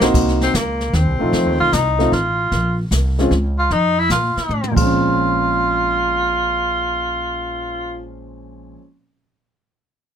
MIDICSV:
0, 0, Header, 1, 6, 480
1, 0, Start_track
1, 0, Key_signature, -5, "minor"
1, 0, Tempo, 397088
1, 160, Time_signature, 3, 2, 24, 8
1, 12271, End_track
2, 0, Start_track
2, 0, Title_t, "Tenor saxophone"
2, 0, Program_c, 0, 66
2, 518, Note_on_c, 0, 60, 69
2, 672, Note_on_c, 0, 58, 56
2, 690, Note_off_c, 0, 60, 0
2, 1146, Note_on_c, 0, 60, 64
2, 1164, Note_off_c, 0, 58, 0
2, 1927, Note_off_c, 0, 60, 0
2, 1934, Note_on_c, 0, 65, 92
2, 2090, Note_on_c, 0, 63, 71
2, 2108, Note_off_c, 0, 65, 0
2, 2568, Note_on_c, 0, 65, 64
2, 2586, Note_off_c, 0, 63, 0
2, 3361, Note_off_c, 0, 65, 0
2, 4336, Note_on_c, 0, 65, 73
2, 4497, Note_on_c, 0, 63, 79
2, 4515, Note_off_c, 0, 65, 0
2, 4825, Note_on_c, 0, 64, 83
2, 4843, Note_off_c, 0, 63, 0
2, 4967, Note_off_c, 0, 64, 0
2, 4976, Note_on_c, 0, 65, 61
2, 5717, Note_off_c, 0, 65, 0
2, 5757, Note_on_c, 0, 65, 78
2, 9714, Note_off_c, 0, 65, 0
2, 12271, End_track
3, 0, Start_track
3, 0, Title_t, "Grand piano"
3, 0, Program_c, 1, 0
3, 10, Note_on_c, 1, 60, 64
3, 11, Note_on_c, 1, 58, 72
3, 21, Note_on_c, 1, 63, 74
3, 24, Note_on_c, 1, 66, 71
3, 32, Note_on_c, 1, 72, 83
3, 610, Note_off_c, 1, 60, 0
3, 611, Note_off_c, 1, 58, 0
3, 616, Note_off_c, 1, 63, 0
3, 618, Note_off_c, 1, 66, 0
3, 622, Note_off_c, 1, 72, 0
3, 1437, Note_on_c, 1, 57, 64
3, 1447, Note_on_c, 1, 60, 57
3, 1458, Note_on_c, 1, 63, 54
3, 1462, Note_on_c, 1, 65, 71
3, 2043, Note_off_c, 1, 57, 0
3, 2048, Note_off_c, 1, 60, 0
3, 2053, Note_off_c, 1, 63, 0
3, 2055, Note_off_c, 1, 65, 0
3, 2399, Note_on_c, 1, 57, 73
3, 2403, Note_on_c, 1, 60, 62
3, 2419, Note_on_c, 1, 63, 67
3, 2422, Note_on_c, 1, 65, 74
3, 2540, Note_off_c, 1, 57, 0
3, 2542, Note_off_c, 1, 60, 0
3, 2549, Note_off_c, 1, 63, 0
3, 2551, Note_off_c, 1, 65, 0
3, 3851, Note_on_c, 1, 56, 69
3, 3859, Note_on_c, 1, 60, 60
3, 3865, Note_on_c, 1, 61, 59
3, 3876, Note_on_c, 1, 65, 70
3, 3985, Note_off_c, 1, 56, 0
3, 3989, Note_off_c, 1, 60, 0
3, 3992, Note_off_c, 1, 61, 0
3, 3997, Note_off_c, 1, 65, 0
3, 5699, Note_on_c, 1, 46, 57
3, 5735, Note_on_c, 1, 53, 52
3, 5773, Note_on_c, 1, 56, 54
3, 5805, Note_on_c, 1, 60, 51
3, 5852, Note_on_c, 1, 61, 62
3, 10579, Note_off_c, 1, 46, 0
3, 10598, Note_off_c, 1, 53, 0
3, 10617, Note_off_c, 1, 56, 0
3, 10633, Note_off_c, 1, 60, 0
3, 10656, Note_off_c, 1, 61, 0
3, 12271, End_track
4, 0, Start_track
4, 0, Title_t, "Upright bass"
4, 0, Program_c, 2, 32
4, 6, Note_on_c, 2, 34, 57
4, 151, Note_off_c, 2, 34, 0
4, 170, Note_on_c, 2, 36, 70
4, 629, Note_off_c, 2, 36, 0
4, 649, Note_on_c, 2, 37, 88
4, 1108, Note_off_c, 2, 37, 0
4, 1128, Note_on_c, 2, 39, 88
4, 1286, Note_off_c, 2, 39, 0
4, 1286, Note_on_c, 2, 36, 50
4, 1441, Note_off_c, 2, 36, 0
4, 1457, Note_on_c, 2, 34, 52
4, 1596, Note_off_c, 2, 34, 0
4, 1601, Note_on_c, 2, 41, 70
4, 1764, Note_off_c, 2, 41, 0
4, 1764, Note_on_c, 2, 39, 48
4, 1919, Note_off_c, 2, 39, 0
4, 1927, Note_on_c, 2, 36, 56
4, 2070, Note_off_c, 2, 36, 0
4, 2086, Note_on_c, 2, 36, 86
4, 2545, Note_off_c, 2, 36, 0
4, 2562, Note_on_c, 2, 33, 74
4, 3023, Note_off_c, 2, 33, 0
4, 3043, Note_on_c, 2, 34, 72
4, 3503, Note_off_c, 2, 34, 0
4, 3516, Note_on_c, 2, 36, 78
4, 3980, Note_off_c, 2, 36, 0
4, 3997, Note_on_c, 2, 37, 87
4, 4460, Note_off_c, 2, 37, 0
4, 4479, Note_on_c, 2, 41, 71
4, 4941, Note_off_c, 2, 41, 0
4, 4953, Note_on_c, 2, 46, 83
4, 5252, Note_off_c, 2, 46, 0
4, 5426, Note_on_c, 2, 45, 75
4, 5741, Note_off_c, 2, 45, 0
4, 5755, Note_on_c, 2, 34, 69
4, 10560, Note_off_c, 2, 34, 0
4, 12271, End_track
5, 0, Start_track
5, 0, Title_t, "Muted upright bass strokes"
5, 5278, Note_on_c, 9, 29, 36
5, 5399, Note_off_c, 9, 29, 0
5, 12271, End_track
6, 0, Start_track
6, 0, Title_t, "Drums"
6, 16, Note_on_c, 9, 38, 87
6, 136, Note_off_c, 9, 38, 0
6, 173, Note_on_c, 9, 36, 65
6, 175, Note_on_c, 9, 25, 46
6, 175, Note_on_c, 9, 38, 38
6, 175, Note_on_c, 9, 49, 66
6, 294, Note_off_c, 9, 36, 0
6, 296, Note_off_c, 9, 38, 0
6, 296, Note_off_c, 9, 49, 0
6, 342, Note_on_c, 9, 38, 28
6, 462, Note_off_c, 9, 38, 0
6, 498, Note_on_c, 9, 38, 39
6, 619, Note_off_c, 9, 38, 0
6, 653, Note_on_c, 9, 36, 25
6, 657, Note_on_c, 9, 44, 60
6, 659, Note_on_c, 9, 38, 54
6, 774, Note_off_c, 9, 36, 0
6, 778, Note_off_c, 9, 44, 0
6, 780, Note_off_c, 9, 38, 0
6, 976, Note_on_c, 9, 38, 36
6, 1097, Note_off_c, 9, 38, 0
6, 1131, Note_on_c, 9, 36, 16
6, 1131, Note_on_c, 9, 38, 39
6, 1252, Note_off_c, 9, 36, 0
6, 1252, Note_off_c, 9, 38, 0
6, 1606, Note_off_c, 9, 25, 0
6, 1606, Note_on_c, 9, 25, 43
6, 1606, Note_on_c, 9, 38, 40
6, 1608, Note_on_c, 9, 36, 19
6, 1727, Note_off_c, 9, 38, 0
6, 1729, Note_off_c, 9, 36, 0
6, 2087, Note_on_c, 9, 36, 22
6, 2089, Note_on_c, 9, 44, 54
6, 2091, Note_on_c, 9, 38, 58
6, 2208, Note_off_c, 9, 36, 0
6, 2210, Note_off_c, 9, 44, 0
6, 2212, Note_off_c, 9, 38, 0
6, 2415, Note_on_c, 9, 38, 30
6, 2536, Note_off_c, 9, 38, 0
6, 2567, Note_on_c, 9, 36, 22
6, 2574, Note_on_c, 9, 38, 39
6, 2687, Note_off_c, 9, 36, 0
6, 2695, Note_off_c, 9, 38, 0
6, 3043, Note_on_c, 9, 36, 22
6, 3044, Note_off_c, 9, 25, 0
6, 3044, Note_on_c, 9, 25, 46
6, 3044, Note_on_c, 9, 38, 37
6, 3164, Note_off_c, 9, 36, 0
6, 3165, Note_off_c, 9, 38, 0
6, 3522, Note_on_c, 9, 44, 49
6, 3523, Note_on_c, 9, 36, 17
6, 3525, Note_on_c, 9, 38, 54
6, 3643, Note_off_c, 9, 44, 0
6, 3644, Note_off_c, 9, 36, 0
6, 3646, Note_off_c, 9, 38, 0
6, 3850, Note_on_c, 9, 38, 30
6, 3971, Note_off_c, 9, 38, 0
6, 4001, Note_on_c, 9, 36, 24
6, 4004, Note_on_c, 9, 38, 36
6, 4122, Note_off_c, 9, 36, 0
6, 4125, Note_off_c, 9, 38, 0
6, 4480, Note_on_c, 9, 36, 21
6, 4482, Note_off_c, 9, 25, 0
6, 4482, Note_on_c, 9, 25, 42
6, 4482, Note_on_c, 9, 38, 37
6, 4601, Note_off_c, 9, 36, 0
6, 4603, Note_off_c, 9, 38, 0
6, 4953, Note_on_c, 9, 44, 57
6, 4955, Note_on_c, 9, 38, 59
6, 4959, Note_on_c, 9, 36, 21
6, 5074, Note_off_c, 9, 44, 0
6, 5076, Note_off_c, 9, 38, 0
6, 5079, Note_off_c, 9, 36, 0
6, 5286, Note_on_c, 9, 38, 33
6, 5407, Note_off_c, 9, 38, 0
6, 5444, Note_on_c, 9, 48, 36
6, 5565, Note_off_c, 9, 48, 0
6, 5604, Note_on_c, 9, 48, 49
6, 5724, Note_off_c, 9, 48, 0
6, 5759, Note_off_c, 9, 25, 0
6, 5761, Note_on_c, 9, 36, 54
6, 5767, Note_on_c, 9, 49, 56
6, 5881, Note_off_c, 9, 36, 0
6, 5888, Note_off_c, 9, 49, 0
6, 12271, End_track
0, 0, End_of_file